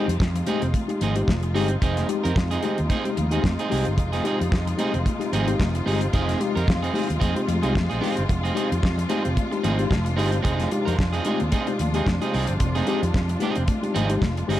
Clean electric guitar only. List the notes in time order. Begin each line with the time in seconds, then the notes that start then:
0.08 muted clean electric guitar stroke
0.20 muted clean electric guitar stroke
0.36 muted clean electric guitar stroke
0.47 C4 D#4 G#4
0.63 muted clean electric guitar stroke
0.90 muted clean electric guitar stroke
1.02 C4 D#4 G#4
1.16 muted clean electric guitar stroke
1.29 muted clean electric guitar stroke
1.43 muted clean electric guitar stroke
1.54 C4 D#4 G#4
1.70 muted clean electric guitar stroke
1.82 C4 D#4 G#4
2.09 muted clean electric guitar stroke
2.24 C4 D#4 A#4
2.36 muted clean electric guitar stroke
2.51 C4 D#4 G#4
2.63 C4 D#4 G#4
2.79 muted clean electric guitar stroke
2.90 C4 D#4 G#4
3.06 muted clean electric guitar stroke
3.17 muted clean electric guitar stroke
3.32 C4 D#4 G#4
3.44 muted clean electric guitar stroke
3.60 C4 D#4 G#4
3.71 C4 D#4 G#4
3.87 muted clean electric guitar stroke
3.98 muted clean electric guitar stroke
4.13 C4 D#4 G#4
4.26 C4 D#4 G#4
4.40 muted clean electric guitar stroke
4.52 muted clean electric guitar stroke
4.67 muted clean electric guitar stroke
4.79 C4 D#4 G#4
4.94 muted clean electric guitar stroke
5.21 muted clean electric guitar stroke
5.33 C4 D#4 G#4
5.48 muted clean electric guitar stroke
5.60 muted clean electric guitar stroke
5.75 muted clean electric guitar stroke
5.86 C4 D#4 G#4
6.02 muted clean electric guitar stroke
6.13 C4 D#4 G#4
6.40 muted clean electric guitar stroke
6.55 C4 D#4 A#4
6.67 muted clean electric guitar stroke
6.83 C4 D#4 G#4
6.94 C4 D#4 G#4
7.09 muted clean electric guitar stroke
7.20 C4 D#4 G#4
7.36 muted clean electric guitar stroke
7.48 muted clean electric guitar stroke
7.63 C4 D#4 G#4
7.75 muted clean electric guitar stroke
7.90 C4 D#4 G#4
8.01 C4 D#4 G#4
8.17 muted clean electric guitar stroke
8.29 muted clean electric guitar stroke
8.43 C4 D#4 G#4
8.55 C4 D#4 G#4
8.71 muted clean electric guitar stroke
8.83 muted clean electric guitar stroke
8.98 muted clean electric guitar stroke
9.09 C4 D#4 G#4
9.24 muted clean electric guitar stroke
9.52 muted clean electric guitar stroke
9.63 C4 D#4 G#4
9.78 muted clean electric guitar stroke
9.90 muted clean electric guitar stroke
10.05 muted clean electric guitar stroke
10.16 C4 D#4 G#4
10.32 muted clean electric guitar stroke
10.43 C4 D#4 G#4
10.71 muted clean electric guitar stroke
10.85 C4 D#4 A#4
10.97 muted clean electric guitar stroke
11.13 C4 D#4 G#4
11.25 C4 D#4 G#4
11.41 muted clean electric guitar stroke
11.52 C4 D#4 G#4
11.68 muted clean electric guitar stroke
11.81 muted clean electric guitar stroke
11.95 C4 D#4 G#4
12.22 C4 D#4 G#4
12.33 C4 D#4 G#4
12.49 muted clean electric guitar stroke
12.60 muted clean electric guitar stroke
12.75 C4 D#4 G#4
12.87 C4 D#4 G#4
13.03 muted clean electric guitar stroke
13.15 muted clean electric guitar stroke
13.30 muted clean electric guitar stroke
13.42 C4 D#4 G#4
13.57 muted clean electric guitar stroke
13.84 muted clean electric guitar stroke
13.95 C4 D#4 G#4
14.11 muted clean electric guitar stroke
14.23 muted clean electric guitar stroke
14.38 muted clean electric guitar stroke
14.49 C4 D#4 G#4